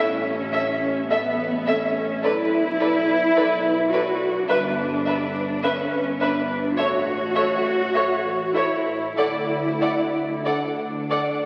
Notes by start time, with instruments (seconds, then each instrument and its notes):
Already playing: cello section C#4
0.00 double bass section A1
0.53 viola section A4, violin section E5
1.10 double bass section A1, cello section B3, viola section A4, violin section E5
1.66 cello section C#4, viola section A4, violin section E5
2.23 double bass section B1, cello section E4, viola section A4, violin section B4 D5
2.79 viola section A4, violin section B4 D5
3.36 double bass section B1, viola section A4, violin section B4 D5
3.92 cello section F#4, viola section A4, violin section B4 D5
4.48 double bass section G1, cello section D4, viola section B4, violin section B4 E5
5.06 viola section B4, violin section B4 E5
5.63 double bass section G1, cello section C#4, viola section B4, violin section B4 E5
6.19 cello section D4, viola section B4, violin section B4 E5
6.76 double bass section A1, cello section F#4, viola section A4, violin section C#5 E5
7.35 viola section A4, violin section C#5 E5
7.93 double bass section A1, viola section A4, violin section C#5 E5
8.54 cello section E4, viola section A4, violin section C#5 E5
9.16 double bass section D2, cello section E4, viola section A4, violin section D5 F#5
9.80 viola section A4, violin section D5 F#5
10.37 cello section E4
10.45 double bass section D2, cello section D4, viola section A4, violin section D5 F#5
11.10 viola section A4, violin section D5 F#5